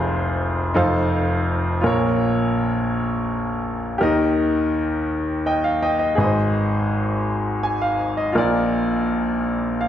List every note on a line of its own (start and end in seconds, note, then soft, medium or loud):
0.00 0.71 F1 medium
0.00 0.71 F2 medium
0.00 0.73 F4 medium
0.00 0.78 G#4 soft
0.00 0.75 C5 medium
0.74 1.80 F1 medium
0.74 1.80 F2 medium
0.74 1.84 D#4 medium
0.74 1.80 F4 medium
0.74 1.84 A4 medium
0.74 1.85 C5 medium
0.74 1.85 F5 medium
1.81 3.97 A#1 medium
1.81 3.97 A#2 medium
1.81 3.96 F4 medium
1.81 3.97 A#4 soft
1.86 3.99 C#5 medium
3.98 6.15 D#2 medium
3.98 6.15 D#3 medium
3.98 6.13 G4 medium
3.98 6.14 A#4 soft
4.03 5.44 D#5 medium
5.46 5.63 D#5 soft
5.46 5.80 G5 medium
5.64 5.81 F5 medium
5.82 5.98 D#5 soft
5.82 6.00 G5 soft
5.99 6.19 D#5 soft
6.15 8.32 G#1 medium
6.15 8.32 G#2 medium
6.15 8.30 G#4 medium
6.15 6.25 B4 soft
6.20 7.61 D#5 medium
6.24 8.35 C5 soft
7.63 7.81 G#5 soft
7.82 8.16 F5 medium
8.17 8.52 D#5 medium
8.32 9.88 A#1 medium
8.32 9.88 A#2 medium
8.32 9.88 F4 medium
8.32 9.78 A#4 soft
8.38 9.79 D5 medium
9.81 9.88 F5 soft